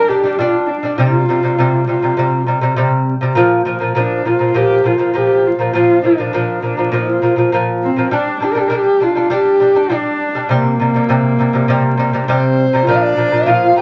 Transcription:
0.08 lute G3 D4, horsehead fiddle G4
0.23 lute G3 D4
0.37 lute G3 D4, horsehead fiddle F4
0.67 horsehead fiddle D4
0.83 lute G3 D4
0.98 lute C3 G3, horsehead fiddle F4
1.29 lute C3 G3
1.43 lute C3 G3
1.58 lute C3 G3
1.87 lute C3 G3, horsehead fiddle F4
2.02 lute C3 G3
2.17 lute C3 G3
2.46 lute C3 G3
2.61 lute C3 G3
2.76 lute C3 G3
3.21 lute C3 G3
3.35 lute A#2 F3
3.65 lute A#2 F3
3.80 lute A#2 F3
3.95 lute A#2 F3, horsehead fiddle D4
4.25 lute A#2 F3, horsehead fiddle F4
4.39 lute A#2 F3
4.54 lute A#2 F3, horsehead fiddle G4
4.84 lute A#2 F3, horsehead fiddle F4
4.98 lute A#2 F3
5.14 lute A#2 F3, horsehead fiddle G4
5.47 horsehead fiddle F4
5.59 lute A#2 F3
5.73 lute A#2 F3, horsehead fiddle F4
6.03 lute A#2 F3, horsehead fiddle D4
6.18 lute A#2 F3
6.33 lute A#2 F3
6.62 lute A#2 F3, horsehead fiddle D4
6.77 lute A#2 F3
6.92 lute A#2 F3
6.96 horsehead fiddle F4
7.22 lute A#2 F3
7.36 lute A#2 F3
7.52 lute A#2 F3
7.83 horsehead fiddle C4
7.96 lute A#2 F3
8.11 lute G3 D4, horsehead fiddle D4
8.40 lute G3 D4, horsehead fiddle G4
8.52 lute G3, horsehead fiddle A#4
8.57 lute D4, horsehead fiddle G4
8.68 lute G3 D4, horsehead fiddle A#4
8.75 horsehead fiddle G4
9.00 lute G3 D4, horsehead fiddle F4
9.15 lute G3 D4
9.30 lute G3 D4, horsehead fiddle G4
9.60 lute G3 D4
9.75 lute G3 D4
9.90 lute G3 D4, horsehead fiddle D4
10.35 lute G3 D4
10.49 lute C3 G3, horsehead fiddle A#3
10.80 lute C3 G3
10.94 lute C3 G3
11.09 lute C3 G3
11.39 lute C3 G3
11.53 lute C3 G3
11.68 lute C3 G3
11.97 lute C3 G3
12.13 lute C3 G3
12.23 horsehead fiddle D4
12.28 lute C3 G3, horsehead fiddle C4, dizi C5
12.73 lute C3 G3
12.82 horsehead fiddle F4
12.87 lute A#2 F3, horsehead fiddle D4, dizi D5
12.95 dizi F5
13.01 dizi D5
13.17 lute A#2 F3
13.31 lute A#2 F3
13.46 lute A#2 F3, horsehead fiddle F4, dizi F5
13.76 lute A#2 F3, dizi G5

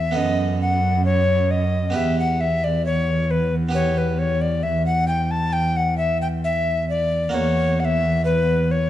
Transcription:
Already playing: harpsichord E2 E4 B4, cello E2, recorder E5
0.11 harpsichord B3 A4 B4
0.16 harpsichord F#2, cello F#2, recorder D#5
0.61 recorder F#5
1.05 recorder C#5
1.51 recorder D#5
1.90 harpsichord B3 G4 B4
1.95 harpsichord E2, cello E2, recorder E5
2.19 recorder F#5
2.41 recorder E5
2.64 recorder D5
2.86 recorder C#5
3.31 recorder B4
3.69 harpsichord B3 G4 B4
3.75 recorder C#5
3.98 recorder B4
4.19 recorder C#5
4.41 recorder D5
4.63 recorder E5
4.86 recorder F#5
5.08 recorder G5
5.31 recorder A5
5.53 recorder G5
5.77 recorder F#5
5.98 recorder E5
6.22 recorder G5
6.44 recorder E5
6.90 recorder D5
7.29 harpsichord A#3 F#4
7.33 cello E2, harpsichord E2, recorder C#5
7.80 recorder F#5
7.85 recorder E5
8.25 recorder B4
8.71 recorder C#5

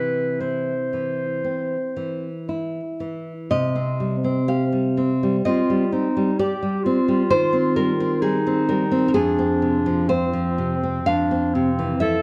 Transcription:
Already playing: nylon-string guitar C3 E3, clarinet B4
0.40 nylon-string guitar E4, clarinet C5
0.93 nylon-string guitar E3
1.45 nylon-string guitar C4
1.97 nylon-string guitar E3
2.49 nylon-string guitar E4
3.00 nylon-string guitar E3
3.51 nylon-string guitar C3 D#5
3.75 nylon-string guitar C4
4.00 nylon-string guitar G3
4.24 nylon-string guitar C4
4.48 nylon-string guitar G4 F5
4.72 nylon-string guitar G3
4.97 nylon-string guitar C4
5.23 nylon-string guitar G3
5.45 nylon-string guitar C4 D#5, clarinet F4
5.70 nylon-string guitar G3
5.92 nylon-string guitar C4, clarinet D#4
6.17 nylon-string guitar G3
6.39 clarinet G4, nylon-string guitar G4 D5
6.63 nylon-string guitar G3
6.84 nylon-string guitar C4, clarinet F4
7.08 nylon-string guitar G3
7.30 nylon-string guitar D#3 C5
7.53 nylon-string guitar C4
7.76 nylon-string guitar G3 A#4
8.00 nylon-string guitar C4
8.22 nylon-string guitar G3 G#4, clarinet D#4
8.47 nylon-string guitar C4
8.69 nylon-string guitar G3 A#4
8.91 nylon-string guitar C4
9.08 nylon-string guitar A#4
9.14 nylon-string guitar F2 G#4, clarinet D4
9.39 nylon-string guitar C4
9.62 nylon-string guitar C3
9.86 nylon-string guitar F3
10.09 clarinet C4, nylon-string guitar F4 C5
10.33 nylon-string guitar F3
10.58 nylon-string guitar C3
10.83 nylon-string guitar C4
11.06 nylon-string guitar F2 F5, clarinet D4
11.31 nylon-string guitar C4
11.55 nylon-string guitar C3, clarinet C4
11.79 nylon-string guitar E3
12.00 nylon-string guitar E4 E5, clarinet A4

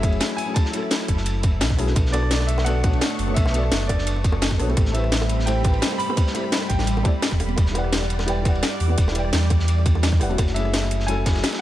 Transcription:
Already playing: sub bass F#1, analog synth pad E4, grand piano E5
0.00 felt piano F#3 A3 C#4, kick, closed hi-hat
0.04 felt piano E4 G#4, ride
0.12 ride
0.20 snare, closed hi-hat, ride
0.30 cross-stick
0.37 grand piano G#5, open hi-hat, ride
0.46 felt piano F#3 A3 C#4 E4 G#4
0.54 grand piano A5, kick, closed hi-hat, ride
0.65 snare
0.70 felt piano F#3 A3 C#4, closed hi-hat, ride
0.75 felt piano E4 A4
0.83 cross-stick
0.91 snare, closed hi-hat, ride
1.00 cross-stick, snare
1.08 sub bass F#1, kick, closed hi-hat, ride
1.17 snare
1.26 closed hi-hat, ride
1.43 kick, closed hi-hat, ride
1.61 sub bass B1, snare, closed hi-hat, ride
1.70 kick, snare
1.77 felt piano F#3 A3 C#4 E4 G#4, cross-stick, open hi-hat, ride
1.86 felt piano B3 D4 F#4 A4 B4, snare
1.96 sub bass B1, analog synth pad A3 D4 C#6, kick, closed hi-hat, ride, high bongo
2.06 snare
2.10 felt piano B3 D4 F#4, grand piano D5, closed hi-hat, ride, high bongo
2.15 felt piano A4 D5
2.23 cross-stick
2.31 snare, closed hi-hat, ride
2.40 snare, high bongo
2.47 grand piano E5, closed hi-hat, ride
2.58 snare, high bongo
2.65 felt piano B3 D4 F#4 A4 D5, grand piano F#5, closed hi-hat, ride
2.81 felt piano B3 D4 F#4, kick, closed hi-hat, ride, high bongo
2.86 felt piano A4 C#5
2.93 ride
3.01 snare, closed hi-hat, ride, high bongo
3.11 cross-stick
3.19 sub bass F#1, open hi-hat, ride
3.27 felt piano B3 D4 F#4 A4 C#5, high bongo, high conga
3.34 sub bass B1, grand piano E5, kick, closed hi-hat, ride
3.45 snare, high bongo
3.51 felt piano B3 D4 F#4, closed hi-hat, ride
3.56 felt piano A4 D5
3.63 cross-stick
3.72 sub bass F#1, snare, closed hi-hat, ride, high bongo
3.81 snare
3.87 grand piano D5, kick, closed hi-hat, ride, high bongo
3.98 snare
4.07 closed hi-hat, ride
4.16 high bongo
4.24 kick, closed hi-hat, ride
4.32 high bongo
4.42 snare, closed hi-hat, ride
4.51 kick, snare
4.58 sub bass B1, felt piano B3 D4 F#4 A4 C#5, cross-stick, open hi-hat, ride, high bongo
4.67 felt piano A3 C4 E4 G4 A4, ride, high conga
4.77 sub bass A1, analog synth pad G3 C4 B5, kick, closed hi-hat, ride, high bongo
4.86 snare
4.91 felt piano A3 C4 E4, grand piano E5, closed hi-hat, ride
4.96 felt piano G4 B4
5.04 cross-stick, high bongo
5.12 snare, closed hi-hat, ride
5.21 snare, high bongo
5.29 closed hi-hat, ride
5.40 snare
5.46 felt piano A3 C4 E4 G4 C5, grand piano G5, closed hi-hat, ride, high bongo
5.61 felt piano A3 C4 E4, kick, closed hi-hat, ride, high bongo
5.68 felt piano B4
5.73 ride
5.82 snare, closed hi-hat, ride
5.91 cross-stick, high bongo
5.98 grand piano B5, open hi-hat, ride
6.07 felt piano A3 C4 E4 G4 B4, high bongo, high conga
6.17 kick, closed hi-hat, ride
6.27 snare
6.31 felt piano A3 C4 E4, closed hi-hat, ride, high bongo
6.37 felt piano G4 C5
6.44 cross-stick
6.52 snare, closed hi-hat, ride, high bongo
6.61 cross-stick, snare
6.69 sub bass A1, grand piano G5, kick, closed hi-hat, ride
6.79 snare, high bongo
6.87 closed hi-hat, ride
6.97 high bongo
7.03 felt piano A3 C4 E4 G4 D5, kick, closed hi-hat, ride
7.22 snare, closed hi-hat, ride, high bongo
7.32 sub bass E1, kick, snare
7.40 cross-stick, open hi-hat, ride, high bongo
7.48 ride, high conga
7.56 sub bass E1, analog synth pad D5, kick, closed hi-hat, ride, high bongo
7.66 snare
7.72 felt piano E4 G4 B4, closed hi-hat, ride, high bongo
7.77 felt piano D5 F#5
7.84 cross-stick
7.93 snare, closed hi-hat, ride
8.02 snare, high bongo
8.10 closed hi-hat, ride
8.19 snare, high bongo
8.26 felt piano E4 G4 B4 D5 G5, closed hi-hat, ride
8.42 felt piano E4 G4 B4, kick, closed hi-hat
8.46 felt piano D5 F#5, ride, high bongo
8.55 ride
8.63 snare, closed hi-hat, ride, high bongo
8.72 cross-stick
8.80 sub bass E2, open hi-hat, ride
8.88 felt piano E4 G4 B4 D5 F#5, high bongo, high conga
8.98 sub bass E1, kick, closed hi-hat, ride
9.08 snare, high bongo
9.12 felt piano E4 G4 B4, closed hi-hat, ride
9.17 felt piano D5 G5
9.24 cross-stick
9.33 sub bass E2, snare, closed hi-hat, ride, high bongo
9.43 snare
9.50 kick, closed hi-hat, ride, high bongo
9.60 snare
9.68 closed hi-hat, ride
9.78 high bongo
9.86 kick, closed hi-hat, ride
9.95 high bongo
10.03 snare, closed hi-hat, ride
10.12 kick, snare
10.19 sub bass E1, felt piano E4 G4 B4 D5 F#5, cross-stick, open hi-hat, ride, high bongo
10.28 felt piano F#3 A3 C#4 E4 F#4, ride, high conga
10.38 sub bass F#1, analog synth pad E4, kick, closed hi-hat, ride, high bongo
10.47 snare
10.52 felt piano F#3 A3 C#4, grand piano E5, closed hi-hat, ride
10.58 felt piano E4 G#4
10.65 cross-stick, high bongo
10.74 snare, closed hi-hat, ride
10.83 snare, high bongo
10.91 closed hi-hat, ride
11.00 snare
11.07 felt piano F#3 A3 C#4 E4 A4, grand piano G#5, closed hi-hat, ride, high bongo
11.23 felt piano F#3 A3 C#4, kick, snare, closed hi-hat
11.27 felt piano E4 G#4, ride, high bongo
11.36 snare, ride
11.43 snare, closed hi-hat, ride
11.52 cross-stick, snare, ride, high bongo

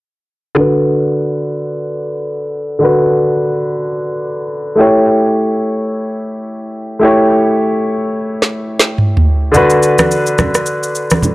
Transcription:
0.55 grand piano D3 D4 F#4
0.60 grand piano B4
2.79 grand piano D3 D4 F#4
2.84 grand piano B4
4.75 grand piano A3 E4 G4
4.80 grand piano C#5
6.99 grand piano A3 E4 G4
7.04 grand piano C#5
8.42 snare
8.79 snare
8.98 mid tom
9.17 floor tom
9.52 grand piano D3 D4 F#4, low conga, shaker
9.57 grand piano B4
9.70 shaker
9.83 shaker
9.98 cross-stick, high conga, shaker
10.11 shaker
10.27 shaker
10.38 cross-stick, high conga, low conga, shaker
10.55 cross-stick, shaker
10.66 shaker
10.83 shaker
10.95 shaker
11.10 cross-stick, high conga, shaker
11.23 low conga, shaker

